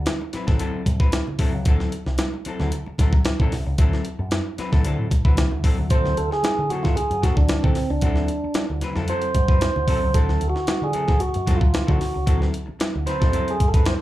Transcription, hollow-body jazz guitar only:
0.08 muted hollow-body jazz guitar stroke
0.21 muted hollow-body jazz guitar stroke
0.33 F#3 C4 E4 B4
0.47 F#3 C4 E4 A4
0.59 F#3 C4 E4 A4
0.85 muted hollow-body jazz guitar stroke
1.00 F#3 C4 E4 B4
1.13 muted hollow-body jazz guitar stroke
1.27 muted hollow-body jazz guitar stroke
1.39 F#3 C4 E4 A4
1.53 muted hollow-body jazz guitar stroke
1.67 F#3 C4 E4 A4
2.08 muted hollow-body jazz guitar stroke
2.19 muted hollow-body jazz guitar stroke
2.34 muted hollow-body jazz guitar stroke
2.46 F#3 C4 E4 A4
2.60 F#3 C4 E4 A4
2.73 muted hollow-body jazz guitar stroke
2.87 muted hollow-body jazz guitar stroke
3.00 F#3 C4 E4 A4
3.14 muted hollow-body jazz guitar stroke
3.27 muted hollow-body jazz guitar stroke
3.41 F#3 C4 E4 A4
3.53 muted hollow-body jazz guitar stroke
3.67 muted hollow-body jazz guitar stroke
3.79 F#3 C4 E4 A4
4.19 muted hollow-body jazz guitar stroke
4.32 muted hollow-body jazz guitar stroke
4.46 muted hollow-body jazz guitar stroke
4.58 F#3 C4 E4 B4
4.72 F#3 C4 E4 A4
4.85 F#3 C4 E4 A4
5.11 muted hollow-body jazz guitar stroke
5.25 F#3 C4 E4 B4
5.38 muted hollow-body jazz guitar stroke
5.52 muted hollow-body jazz guitar stroke
5.64 F#3 C4 E4 A4
5.78 muted hollow-body jazz guitar stroke
5.90 F#3 C4 E4 A4
6.31 muted hollow-body jazz guitar stroke
6.44 muted hollow-body jazz guitar stroke
6.59 muted hollow-body jazz guitar stroke
6.72 F#3 C4 E4 A4
6.85 F#3 C4 E4 A4
6.97 muted hollow-body jazz guitar stroke
7.11 muted hollow-body jazz guitar stroke
7.22 F#3 C4 E4 A4
7.37 muted hollow-body jazz guitar stroke
7.50 muted hollow-body jazz guitar stroke
7.64 F#3 C4 E4 A4
7.77 muted hollow-body jazz guitar stroke
7.91 muted hollow-body jazz guitar stroke
8.03 F#3 C4 E4 A4
8.44 muted hollow-body jazz guitar stroke
8.56 muted hollow-body jazz guitar stroke
8.70 muted hollow-body jazz guitar stroke
8.82 F#3 C4 E4 B4
8.96 F#3 C4 E4 A4
9.08 F#3 C4 E4 A4
9.36 muted hollow-body jazz guitar stroke
9.49 F#3 C4 E4 B4
9.62 muted hollow-body jazz guitar stroke
9.75 muted hollow-body jazz guitar stroke
9.88 F#3 C4 E4 A4
10.02 muted hollow-body jazz guitar stroke
10.15 F#3 C4 E4 A4
10.55 muted hollow-body jazz guitar stroke
10.68 muted hollow-body jazz guitar stroke
10.81 muted hollow-body jazz guitar stroke
10.94 F#3 C4 E4 A4
11.07 F#3 C4 E4 A4
11.20 muted hollow-body jazz guitar stroke
11.35 muted hollow-body jazz guitar stroke
11.46 F#3 C4 E4 A4
11.61 muted hollow-body jazz guitar stroke
11.74 muted hollow-body jazz guitar stroke
11.87 F#3 C4 E4 A4
12.00 muted hollow-body jazz guitar stroke
12.14 muted hollow-body jazz guitar stroke
12.26 F#3 C4 E4 A4
12.66 muted hollow-body jazz guitar stroke
12.79 muted hollow-body jazz guitar stroke
12.93 muted hollow-body jazz guitar stroke
13.06 F#3 C4 E4 B4
13.20 F#3 C4 E4 A4
13.32 F#3 C4 E4 A4
13.60 muted hollow-body jazz guitar stroke
13.75 F#3 C4 E4 B4
13.87 muted hollow-body jazz guitar stroke

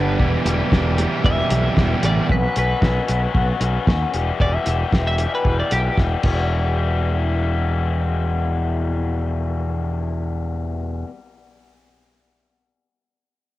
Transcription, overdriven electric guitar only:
Already playing: G2 D3 G3 B3 D4 G4
0.19 E2 B2 E3 G3 E4 G4
0.44 E2 B2 E3 G3 E4 G4
0.71 E2 B2 E3 G3 E4 G4
0.97 E2 B2 E3 G3 E4 G4
1.23 E2 B2 E3 G3 E4 G4
1.50 E2 B2 E3 G3 E4 G4
1.76 E2 B2 E3 G3 E4 G4
2.02 E2 B2 E3 G3 E4 G4
2.28 B2 F#3 B3 C#4 F#4
2.55 B2 F#3 B3 C#4 F#4
2.80 B2 F#3 B3 C#4 F#4
3.06 B2 F#3 B3 C#4 F#4
3.33 B2 F#3 B3 C#4 F#4
3.60 B2 F#3 B3 C#4 F#4
3.85 B2 F#3 B3 C#4 F#4
4.12 E2 B2 E3 G3 B3 G4
4.39 E2 B2 E3 G3 B3 G4
4.65 E2 B2 E3 G3 B3 G4
4.90 E2 B2 E3 G3 B3 G4
5.17 E2 B2 E3 G3 B3 G4
5.44 E2 B2 E3 G3 B3 G4
5.70 E2 B2 E3 G3 B3 G4
5.97 E2 B2 E3 G3 B3 G4
6.22 E2 B2 E3 G3 B3
6.26 E4

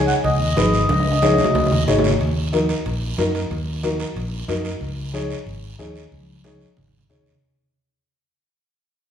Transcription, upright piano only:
Already playing: D#4 G#4 C#5
0.57 D#4 G#4 B4
1.22 D#4 G#4 C#5
1.87 D#4 G#4 C#5
2.53 D#4 F#4 A#4
3.18 D#4 F#4 A#4
3.83 D#4 F#4 A#4
4.48 D#4 F#4 A#4
5.13 D#4 G#4 C#5
5.79 D#4 G#4 C#5
6.44 D#4 G#4 C#5
7.09 D#4 G#4 C#5

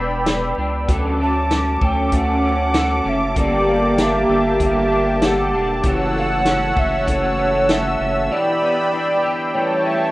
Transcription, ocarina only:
Already playing: B4
1.23 A5
1.84 G5
2.16 F#5
3.09 E5
3.39 D5
4.02 E5
4.64 E5
5.25 F#5
6.19 F#5
6.79 E5
7.10 C#5
7.72 E5
8.32 D5
8.94 D5
9.54 C#5
9.85 E5

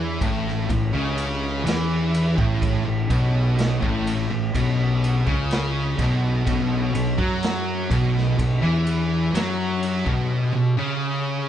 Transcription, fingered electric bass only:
Already playing: E2
0.21 A1
0.69 A1
0.95 C#2
1.65 E2
2.38 A1
2.86 A1
3.10 B1
3.82 A1
4.30 A1
4.54 B1
5.27 C#2
5.99 B1
6.47 B1
6.94 B1
7.19 F#2
7.90 B1
8.38 B1
8.63 E2
9.34 F#2
10.06 B1

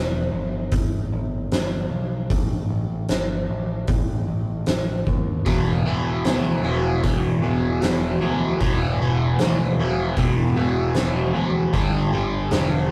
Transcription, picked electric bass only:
Already playing: E1
0.32 G1
0.72 G1
1.12 G1
1.52 G1
1.90 B1
2.30 A1
2.69 A1
3.10 G1
3.49 A1
3.88 A1
4.27 A1
4.67 A1
5.07 D#2
5.46 E1
5.86 E1
6.25 D2
6.64 E1
7.04 E1
7.44 E1
7.83 E1
8.22 D2
8.61 E1
9.00 E1
9.38 D2
9.77 E1
10.17 E1
10.56 E1
10.95 E1
11.34 D2
11.73 G1
12.13 G1
12.52 E1

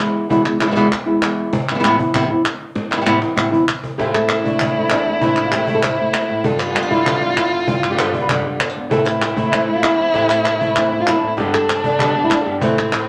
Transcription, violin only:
3.99 E4
4.05 F4
4.13 E4
6.45 F4
8.91 E4
11.01 F4
11.11 E4
11.19 D4
11.28 E4
11.37 D4
12.60 C4

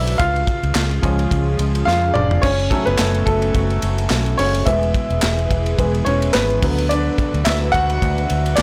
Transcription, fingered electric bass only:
Already playing: B1
0.20 C#2
0.63 C#2
0.75 C#2
1.03 C#2
1.31 C#2
1.59 C#2
1.87 F2
2.15 F1
2.43 F#1
2.87 F#1
2.99 F#1
3.27 F#1
3.55 F#1
3.83 F#1
4.11 B1
4.39 F#1
4.67 E1
5.10 E1
5.23 E1
5.50 E1
5.79 E1
6.07 E1
6.35 G#1
6.63 D2
7.34 D2
7.47 D2
7.74 D2
8.02 D2
8.31 D2
8.58 D2

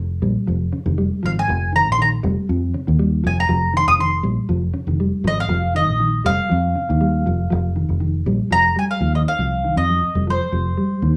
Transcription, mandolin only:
1.26 F5
1.39 G#5
1.76 A#5
1.92 C6
2.02 A#5
3.27 G#5
3.40 A#5
3.77 C6
3.88 D#6
4.00 C6
5.28 D#5
5.40 F5
5.76 D#5
6.26 F5
8.52 A#5
8.79 G#5
8.91 F5
9.15 D#5
9.28 F5
9.77 D#5
10.30 C5

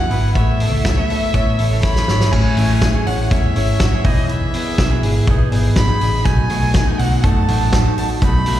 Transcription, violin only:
Already playing: F#5
0.35 E5
1.83 B5
2.32 G#5
3.06 F#5
3.31 E5
4.05 D#5
4.29 E5
5.77 B5
6.25 G#5
6.99 F#5
7.23 A5
7.97 A5
8.22 B5

